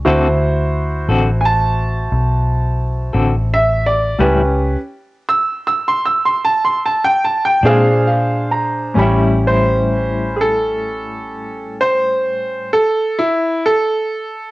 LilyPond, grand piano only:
\new Staff \with { instrumentName = "Grand piano" } { \time 12/8 \key a \mixolydian \tempo 4. = 51 << { r1. | r1 r4 f''8 bes''8 | r1. | } \\ { <e' fis' c''>1. | <cis' g' b'>4 r2. r8 <d' aes' c''>4. | <cis' g' b''>1. | } >> }